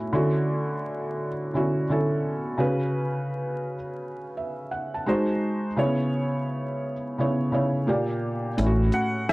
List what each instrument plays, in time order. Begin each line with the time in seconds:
Already playing: felt piano A2 A3 C#4 E4 F#4
0.13 felt piano D3 C#4 E4 F#4
1.54 felt piano D3 C#4 E4 F#4
1.89 felt piano D3 C#4 E4 A4
2.58 felt piano C#3 C#4 F#4 B4
4.37 felt piano E5
4.71 felt piano F#5
4.94 felt piano A5
5.06 felt piano G#3 D#4 F#4 C5
5.76 felt piano C#3 B3 E4 C#5
7.18 felt piano C#3 B3 E4 C#5
7.52 felt piano C#3 B3 E4 C#5
7.87 felt piano A#2 A#3 G4 D5
8.57 fingered electric bass A1, felt piano A2 A3 C#4 E4, closed hi-hat
8.66 felt piano F#4
8.92 upright piano F#5, closed hi-hat, shaker
9.29 upright piano E5, cross-stick, closed hi-hat